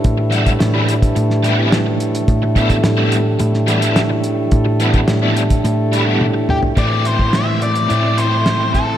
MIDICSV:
0, 0, Header, 1, 8, 480
1, 0, Start_track
1, 0, Key_signature, 0, "minor"
1, 0, Tempo, 561272
1, 41, Time_signature, 4, 2, 24, 8
1, 7675, End_track
2, 0, Start_track
2, 0, Title_t, "Lead electric guitar"
2, 0, Program_c, 0, 29
2, 5559, Note_on_c, 0, 67, 76
2, 5623, Note_off_c, 0, 67, 0
2, 5800, Note_on_c, 0, 74, 94
2, 6039, Note_on_c, 0, 72, 82
2, 6043, Note_off_c, 0, 74, 0
2, 6283, Note_off_c, 0, 72, 0
2, 6284, Note_on_c, 0, 76, 103
2, 6516, Note_off_c, 0, 76, 0
2, 6520, Note_on_c, 0, 74, 98
2, 7001, Note_on_c, 0, 72, 83
2, 7013, Note_off_c, 0, 74, 0
2, 7472, Note_off_c, 0, 72, 0
2, 7475, Note_on_c, 0, 69, 74
2, 7675, Note_off_c, 0, 69, 0
2, 7675, End_track
3, 0, Start_track
3, 0, Title_t, "Tonewheel organ"
3, 0, Program_c, 1, 16
3, 0, Note_on_c, 1, 52, 59
3, 0, Note_on_c, 1, 62, 62
3, 0, Note_on_c, 1, 67, 53
3, 0, Note_on_c, 1, 71, 68
3, 1919, Note_off_c, 1, 71, 0
3, 1952, Note_on_c, 1, 69, 63
3, 5755, Note_off_c, 1, 69, 0
3, 5757, Note_off_c, 1, 52, 0
3, 5757, Note_off_c, 1, 62, 0
3, 5758, Note_off_c, 1, 67, 0
3, 7675, End_track
4, 0, Start_track
4, 0, Title_t, "Overdriven electric guitar"
4, 0, Program_c, 2, 29
4, 257, Note_on_c, 2, 52, 76
4, 263, Note_on_c, 2, 55, 86
4, 266, Note_on_c, 2, 59, 79
4, 268, Note_on_c, 2, 64, 94
4, 423, Note_off_c, 2, 52, 0
4, 427, Note_off_c, 2, 55, 0
4, 428, Note_off_c, 2, 59, 0
4, 429, Note_off_c, 2, 64, 0
4, 631, Note_on_c, 2, 64, 66
4, 632, Note_on_c, 2, 59, 69
4, 635, Note_on_c, 2, 55, 58
4, 641, Note_on_c, 2, 52, 59
4, 790, Note_off_c, 2, 59, 0
4, 790, Note_off_c, 2, 64, 0
4, 792, Note_off_c, 2, 55, 0
4, 795, Note_off_c, 2, 52, 0
4, 1221, Note_on_c, 2, 52, 83
4, 1227, Note_on_c, 2, 55, 85
4, 1232, Note_on_c, 2, 59, 87
4, 1234, Note_on_c, 2, 64, 92
4, 1340, Note_off_c, 2, 64, 0
4, 1342, Note_off_c, 2, 59, 0
4, 1345, Note_off_c, 2, 55, 0
4, 1348, Note_off_c, 2, 52, 0
4, 1350, Note_on_c, 2, 64, 80
4, 1352, Note_on_c, 2, 59, 66
4, 1356, Note_on_c, 2, 55, 66
4, 1361, Note_on_c, 2, 52, 56
4, 1508, Note_off_c, 2, 64, 0
4, 1509, Note_off_c, 2, 59, 0
4, 1511, Note_off_c, 2, 55, 0
4, 1513, Note_off_c, 2, 52, 0
4, 2187, Note_on_c, 2, 52, 85
4, 2191, Note_on_c, 2, 55, 79
4, 2195, Note_on_c, 2, 59, 91
4, 2198, Note_on_c, 2, 64, 99
4, 2345, Note_off_c, 2, 52, 0
4, 2347, Note_off_c, 2, 55, 0
4, 2349, Note_off_c, 2, 59, 0
4, 2351, Note_off_c, 2, 64, 0
4, 2540, Note_on_c, 2, 64, 83
4, 2545, Note_on_c, 2, 59, 77
4, 2547, Note_on_c, 2, 55, 72
4, 2549, Note_on_c, 2, 52, 54
4, 2701, Note_off_c, 2, 64, 0
4, 2704, Note_off_c, 2, 59, 0
4, 2705, Note_off_c, 2, 55, 0
4, 2706, Note_off_c, 2, 52, 0
4, 3134, Note_on_c, 2, 52, 83
4, 3137, Note_on_c, 2, 55, 91
4, 3139, Note_on_c, 2, 59, 87
4, 3146, Note_on_c, 2, 64, 73
4, 3247, Note_off_c, 2, 64, 0
4, 3252, Note_off_c, 2, 59, 0
4, 3253, Note_off_c, 2, 55, 0
4, 3257, Note_on_c, 2, 64, 81
4, 3261, Note_off_c, 2, 52, 0
4, 3262, Note_on_c, 2, 59, 72
4, 3263, Note_on_c, 2, 55, 61
4, 3273, Note_on_c, 2, 52, 61
4, 3419, Note_off_c, 2, 64, 0
4, 3421, Note_off_c, 2, 59, 0
4, 3422, Note_off_c, 2, 55, 0
4, 3427, Note_off_c, 2, 52, 0
4, 4103, Note_on_c, 2, 52, 75
4, 4104, Note_on_c, 2, 55, 81
4, 4108, Note_on_c, 2, 59, 88
4, 4110, Note_on_c, 2, 64, 83
4, 4261, Note_off_c, 2, 52, 0
4, 4262, Note_off_c, 2, 55, 0
4, 4264, Note_off_c, 2, 59, 0
4, 4265, Note_off_c, 2, 64, 0
4, 4464, Note_on_c, 2, 59, 72
4, 4465, Note_on_c, 2, 64, 73
4, 4472, Note_on_c, 2, 52, 63
4, 4472, Note_on_c, 2, 55, 63
4, 4622, Note_off_c, 2, 59, 0
4, 4622, Note_off_c, 2, 64, 0
4, 4626, Note_off_c, 2, 52, 0
4, 4626, Note_off_c, 2, 55, 0
4, 5062, Note_on_c, 2, 52, 70
4, 5063, Note_on_c, 2, 55, 72
4, 5064, Note_on_c, 2, 59, 82
4, 5070, Note_on_c, 2, 64, 92
4, 5172, Note_off_c, 2, 64, 0
4, 5178, Note_off_c, 2, 55, 0
4, 5179, Note_off_c, 2, 59, 0
4, 5180, Note_off_c, 2, 52, 0
4, 5182, Note_on_c, 2, 64, 69
4, 5189, Note_on_c, 2, 55, 65
4, 5189, Note_on_c, 2, 59, 74
4, 5190, Note_on_c, 2, 52, 65
4, 5341, Note_off_c, 2, 64, 0
4, 5345, Note_off_c, 2, 55, 0
4, 5345, Note_off_c, 2, 59, 0
4, 5346, Note_off_c, 2, 52, 0
4, 5782, Note_on_c, 2, 45, 82
4, 5784, Note_on_c, 2, 52, 84
4, 5789, Note_on_c, 2, 57, 91
4, 5797, Note_on_c, 2, 60, 84
4, 5800, Note_on_c, 2, 64, 78
4, 6736, Note_off_c, 2, 45, 0
4, 6740, Note_on_c, 2, 45, 60
4, 6744, Note_off_c, 2, 52, 0
4, 6747, Note_off_c, 2, 57, 0
4, 6748, Note_on_c, 2, 52, 67
4, 6750, Note_on_c, 2, 57, 74
4, 6753, Note_off_c, 2, 60, 0
4, 6757, Note_on_c, 2, 60, 75
4, 6759, Note_off_c, 2, 64, 0
4, 6763, Note_on_c, 2, 64, 79
4, 7675, Note_off_c, 2, 45, 0
4, 7675, Note_off_c, 2, 52, 0
4, 7675, Note_off_c, 2, 57, 0
4, 7675, Note_off_c, 2, 60, 0
4, 7675, Note_off_c, 2, 64, 0
4, 7675, End_track
5, 0, Start_track
5, 0, Title_t, "Harmonium"
5, 0, Program_c, 3, 20
5, 0, Note_on_c, 3, 45, 65
5, 0, Note_on_c, 3, 57, 65
5, 5843, Note_off_c, 3, 57, 0
5, 5844, Note_off_c, 3, 45, 0
5, 7675, End_track
6, 0, Start_track
6, 0, Title_t, "Picked electric bass"
6, 0, Program_c, 4, 34
6, 41, Note_on_c, 4, 45, 88
6, 485, Note_off_c, 4, 45, 0
6, 520, Note_on_c, 4, 45, 89
6, 963, Note_off_c, 4, 45, 0
6, 996, Note_on_c, 4, 45, 88
6, 1918, Note_off_c, 4, 45, 0
6, 1952, Note_on_c, 4, 45, 96
6, 2397, Note_off_c, 4, 45, 0
6, 2427, Note_on_c, 4, 45, 97
6, 2874, Note_off_c, 4, 45, 0
6, 2913, Note_on_c, 4, 45, 79
6, 3835, Note_off_c, 4, 45, 0
6, 3863, Note_on_c, 4, 45, 89
6, 4311, Note_off_c, 4, 45, 0
6, 4346, Note_on_c, 4, 45, 82
6, 4793, Note_off_c, 4, 45, 0
6, 4826, Note_on_c, 4, 45, 93
6, 5754, Note_off_c, 4, 45, 0
6, 5791, Note_on_c, 4, 45, 93
6, 6720, Note_off_c, 4, 45, 0
6, 6763, Note_on_c, 4, 45, 90
6, 7675, Note_off_c, 4, 45, 0
6, 7675, End_track
7, 0, Start_track
7, 0, Title_t, "Muted overdriven electric guitar strokes"
7, 148, Note_on_c, 9, 29, 45
7, 234, Note_off_c, 9, 29, 0
7, 507, Note_on_c, 9, 29, 41
7, 593, Note_off_c, 9, 29, 0
7, 991, Note_on_c, 9, 29, 51
7, 1077, Note_off_c, 9, 29, 0
7, 1592, Note_on_c, 9, 29, 56
7, 1677, Note_off_c, 9, 29, 0
7, 2072, Note_on_c, 9, 29, 49
7, 2157, Note_off_c, 9, 29, 0
7, 2424, Note_on_c, 9, 29, 45
7, 2509, Note_off_c, 9, 29, 0
7, 2900, Note_on_c, 9, 29, 44
7, 2986, Note_off_c, 9, 29, 0
7, 3502, Note_on_c, 9, 29, 49
7, 3588, Note_off_c, 9, 29, 0
7, 3974, Note_on_c, 9, 29, 52
7, 4060, Note_off_c, 9, 29, 0
7, 4347, Note_on_c, 9, 29, 40
7, 4433, Note_off_c, 9, 29, 0
7, 4827, Note_on_c, 9, 29, 39
7, 4913, Note_off_c, 9, 29, 0
7, 5421, Note_on_c, 9, 29, 48
7, 5506, Note_off_c, 9, 29, 0
7, 7675, End_track
8, 0, Start_track
8, 0, Title_t, "Drums"
8, 37, Note_on_c, 9, 42, 63
8, 40, Note_on_c, 9, 36, 106
8, 122, Note_off_c, 9, 42, 0
8, 126, Note_off_c, 9, 36, 0
8, 275, Note_on_c, 9, 42, 73
8, 361, Note_off_c, 9, 42, 0
8, 397, Note_on_c, 9, 42, 66
8, 398, Note_on_c, 9, 36, 77
8, 483, Note_off_c, 9, 42, 0
8, 484, Note_off_c, 9, 36, 0
8, 517, Note_on_c, 9, 38, 108
8, 517, Note_on_c, 9, 42, 66
8, 602, Note_off_c, 9, 38, 0
8, 602, Note_off_c, 9, 42, 0
8, 757, Note_on_c, 9, 42, 68
8, 842, Note_off_c, 9, 42, 0
8, 876, Note_on_c, 9, 36, 88
8, 877, Note_on_c, 9, 42, 69
8, 961, Note_off_c, 9, 36, 0
8, 962, Note_off_c, 9, 42, 0
8, 994, Note_on_c, 9, 42, 63
8, 1079, Note_off_c, 9, 42, 0
8, 1113, Note_on_c, 9, 38, 33
8, 1198, Note_off_c, 9, 38, 0
8, 1233, Note_on_c, 9, 42, 71
8, 1319, Note_off_c, 9, 42, 0
8, 1474, Note_on_c, 9, 38, 107
8, 1474, Note_on_c, 9, 42, 75
8, 1560, Note_off_c, 9, 38, 0
8, 1560, Note_off_c, 9, 42, 0
8, 1713, Note_on_c, 9, 42, 65
8, 1798, Note_off_c, 9, 42, 0
8, 1836, Note_on_c, 9, 42, 77
8, 1922, Note_off_c, 9, 42, 0
8, 1950, Note_on_c, 9, 42, 65
8, 1951, Note_on_c, 9, 36, 113
8, 2036, Note_off_c, 9, 36, 0
8, 2036, Note_off_c, 9, 42, 0
8, 2189, Note_on_c, 9, 36, 90
8, 2189, Note_on_c, 9, 42, 71
8, 2275, Note_off_c, 9, 36, 0
8, 2275, Note_off_c, 9, 42, 0
8, 2306, Note_on_c, 9, 42, 61
8, 2308, Note_on_c, 9, 36, 75
8, 2392, Note_off_c, 9, 42, 0
8, 2394, Note_off_c, 9, 36, 0
8, 2426, Note_on_c, 9, 38, 103
8, 2426, Note_on_c, 9, 42, 62
8, 2512, Note_off_c, 9, 38, 0
8, 2512, Note_off_c, 9, 42, 0
8, 2666, Note_on_c, 9, 42, 62
8, 2752, Note_off_c, 9, 42, 0
8, 2903, Note_on_c, 9, 42, 57
8, 2989, Note_off_c, 9, 42, 0
8, 3026, Note_on_c, 9, 38, 31
8, 3111, Note_off_c, 9, 38, 0
8, 3146, Note_on_c, 9, 42, 63
8, 3232, Note_off_c, 9, 42, 0
8, 3268, Note_on_c, 9, 42, 67
8, 3353, Note_off_c, 9, 42, 0
8, 3387, Note_on_c, 9, 38, 101
8, 3387, Note_on_c, 9, 42, 60
8, 3472, Note_off_c, 9, 38, 0
8, 3472, Note_off_c, 9, 42, 0
8, 3623, Note_on_c, 9, 42, 55
8, 3708, Note_off_c, 9, 42, 0
8, 3861, Note_on_c, 9, 42, 67
8, 3865, Note_on_c, 9, 36, 104
8, 3946, Note_off_c, 9, 42, 0
8, 3950, Note_off_c, 9, 36, 0
8, 4103, Note_on_c, 9, 42, 64
8, 4189, Note_off_c, 9, 42, 0
8, 4221, Note_on_c, 9, 42, 56
8, 4225, Note_on_c, 9, 36, 80
8, 4307, Note_off_c, 9, 42, 0
8, 4311, Note_off_c, 9, 36, 0
8, 4342, Note_on_c, 9, 38, 107
8, 4342, Note_on_c, 9, 42, 63
8, 4427, Note_off_c, 9, 38, 0
8, 4427, Note_off_c, 9, 42, 0
8, 4589, Note_on_c, 9, 42, 66
8, 4674, Note_off_c, 9, 42, 0
8, 4707, Note_on_c, 9, 42, 67
8, 4709, Note_on_c, 9, 36, 81
8, 4792, Note_off_c, 9, 42, 0
8, 4794, Note_off_c, 9, 36, 0
8, 4829, Note_on_c, 9, 42, 66
8, 4914, Note_off_c, 9, 42, 0
8, 5071, Note_on_c, 9, 42, 72
8, 5157, Note_off_c, 9, 42, 0
8, 5313, Note_on_c, 9, 48, 63
8, 5398, Note_off_c, 9, 48, 0
8, 5549, Note_on_c, 9, 45, 75
8, 5635, Note_off_c, 9, 45, 0
8, 5667, Note_on_c, 9, 43, 83
8, 5752, Note_off_c, 9, 43, 0
8, 5790, Note_on_c, 9, 42, 62
8, 5791, Note_on_c, 9, 36, 94
8, 5875, Note_off_c, 9, 42, 0
8, 5876, Note_off_c, 9, 36, 0
8, 6031, Note_on_c, 9, 42, 64
8, 6116, Note_off_c, 9, 42, 0
8, 6152, Note_on_c, 9, 36, 71
8, 6237, Note_off_c, 9, 36, 0
8, 6270, Note_on_c, 9, 38, 101
8, 6270, Note_on_c, 9, 42, 51
8, 6355, Note_off_c, 9, 38, 0
8, 6355, Note_off_c, 9, 42, 0
8, 6514, Note_on_c, 9, 42, 52
8, 6599, Note_off_c, 9, 42, 0
8, 6631, Note_on_c, 9, 42, 54
8, 6717, Note_off_c, 9, 42, 0
8, 6755, Note_on_c, 9, 42, 52
8, 6841, Note_off_c, 9, 42, 0
8, 6994, Note_on_c, 9, 42, 57
8, 7080, Note_off_c, 9, 42, 0
8, 7234, Note_on_c, 9, 38, 98
8, 7234, Note_on_c, 9, 42, 52
8, 7320, Note_off_c, 9, 38, 0
8, 7320, Note_off_c, 9, 42, 0
8, 7479, Note_on_c, 9, 36, 68
8, 7479, Note_on_c, 9, 42, 47
8, 7564, Note_off_c, 9, 36, 0
8, 7565, Note_off_c, 9, 42, 0
8, 7675, End_track
0, 0, End_of_file